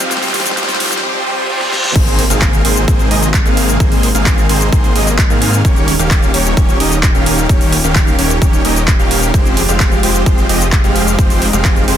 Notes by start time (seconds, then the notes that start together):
Already playing: C3 D#4 G4, riser
0.00 shaker
0.11 F3 G3 C4 G4 C5, snare, closed hi-hat, shaker
0.17 snare
0.23 snare, open hi-hat, shaker
0.28 snare
0.34 F3 G3 C4 G4 C5, snare, open hi-hat
0.40 snare
0.46 snare, closed hi-hat, shaker
0.51 snare
0.57 F3 G3 C4 G4 C5, snare, closed hi-hat, shaker
0.63 snare
0.69 snare, closed hi-hat, shaker
0.74 snare
0.80 F3 G3 C4 G4 C5, snare, open hi-hat
0.86 snare
0.92 snare, closed hi-hat, shaker
0.98 snare
1.03 F3 G3 C4 G4 C5, reverse cymbal
1.26 F3 G3 C4 G4 C5
1.49 F3 G3 C4 G4 C5
1.61 snare
1.72 F3 G3 C4 G4 C5, snare
1.84 snare
1.96 G#1 C3 D#3 G#3 A#3 C4 G#4 C5, kick, closed hi-hat, crash, impact, shaker
2.07 closed hi-hat, shaker
2.19 open hi-hat
2.30 G#1 D#3 A#3 C4 G#4 F5, closed hi-hat, shaker
2.42 kick, clap, closed hi-hat, shaker
2.53 closed hi-hat, shaker
2.65 G#1 D#3 A#3 C4 G#4 C5, open hi-hat
2.76 closed hi-hat, shaker
2.88 G#1 D#3 A#3 C4 G#4 C5, kick, closed hi-hat, shaker
2.99 closed hi-hat, shaker
3.11 G#1 D#3 A#3 C4 G#4 D#5, open hi-hat
3.23 closed hi-hat, shaker
3.34 kick, clap, closed hi-hat, shaker
3.46 G#1 D#3 A#3 C4 G#4 F5, closed hi-hat, shaker
3.57 open hi-hat
3.69 closed hi-hat, shaker
3.80 G#1 D#3 A#3 C4 G#4 C5, kick, closed hi-hat, shaker
3.92 open hi-hat, shaker
4.03 open hi-hat
4.15 G#1 D#3 A#3 C4 G#4 F5, closed hi-hat, shaker
4.26 kick, clap, closed hi-hat, shaker
4.38 closed hi-hat, shaker
4.49 G#1 D#3 A#3 C4 G#4 C5, open hi-hat
4.62 shaker
4.72 G#1 D#3 A#3 C4 G#4 C5, kick, closed hi-hat, shaker
4.84 closed hi-hat, shaker
4.96 G#1 D#3 A#3 C4 G#4 D#5, open hi-hat
5.07 closed hi-hat, shaker
5.19 kick, clap, closed hi-hat, shaker
5.30 G#2 D#3 A#3 C4 G#4 F5, closed hi-hat, shaker
5.42 open hi-hat
5.53 closed hi-hat, shaker
5.65 D#1 D#3 A#3 C#4 G4 C#5, kick, closed hi-hat, shaker
5.76 closed hi-hat, shaker
5.88 open hi-hat
5.99 D#1 D#3 A#3 C#4 G4 F5, closed hi-hat, shaker
6.11 kick, clap, closed hi-hat, shaker
6.23 closed hi-hat, shaker
6.34 D#1 D#3 A#3 C#4 G4 C#5, open hi-hat
6.46 closed hi-hat, shaker
6.57 D#1 D#3 A#3 C#4 G4 C#5, kick, closed hi-hat, shaker
6.69 closed hi-hat, shaker
6.80 D#1 D#3 A#3 C#4 G4 D#5, open hi-hat
6.92 closed hi-hat, shaker
7.03 kick, clap, closed hi-hat, shaker
7.15 D#1 D#3 A#3 C#4 G4 F5, closed hi-hat, shaker
7.26 open hi-hat
7.38 closed hi-hat, shaker
7.49 D#1 D#3 A#3 C#4 G4 C#5, kick, closed hi-hat, shaker
7.61 open hi-hat, shaker
7.72 open hi-hat
7.84 D#1 D#3 A#3 C#4 G4 F5, closed hi-hat, shaker
7.96 kick, clap, closed hi-hat, shaker
8.07 closed hi-hat, shaker
8.19 D#1 D#3 A#3 C#4 G4 C#5, open hi-hat
8.30 closed hi-hat, shaker
8.42 D#1 D#3 A#3 C#4 G4 C#5, kick, closed hi-hat, shaker
8.53 closed hi-hat, shaker
8.65 D#1 D#3 A#3 C#4 G4 D#5, open hi-hat
8.76 closed hi-hat, shaker
8.88 kick, clap, closed hi-hat, shaker
8.99 D#1 D#3 A#3 C#4 G4 F5, closed hi-hat, shaker
9.11 open hi-hat
9.22 closed hi-hat, shaker
9.34 F1 F3 G#3 C4 F4 G4 C5, kick, closed hi-hat, shaker
9.46 closed hi-hat, shaker
9.57 open hi-hat
9.69 F1 F3 G#3 C4 G4 F5, closed hi-hat, shaker
9.80 kick, clap, closed hi-hat, shaker
9.92 closed hi-hat, shaker
10.03 F1 F3 G#3 C4 G4 C5, open hi-hat
10.15 closed hi-hat, shaker
10.26 F1 F3 G#3 C4 G4 C5, kick, closed hi-hat, shaker
10.38 closed hi-hat, shaker
10.49 F1 F3 G#3 C4 G4 D#5, open hi-hat
10.61 closed hi-hat, shaker
10.72 kick, clap, closed hi-hat, shaker
10.84 F1 F3 G#3 C4 G4 F5, closed hi-hat, shaker
10.96 open hi-hat
11.07 closed hi-hat, shaker
11.19 F1 F3 G#3 C4 D#4 G4 C5, kick, closed hi-hat, shaker
11.30 open hi-hat, shaker
11.42 open hi-hat
11.53 F1 F3 G#3 C4 G4 F5, closed hi-hat, shaker
11.65 kick, clap, closed hi-hat, shaker
11.76 closed hi-hat, shaker
11.88 F1 F3 G#3 C4 G4 C5, open hi-hat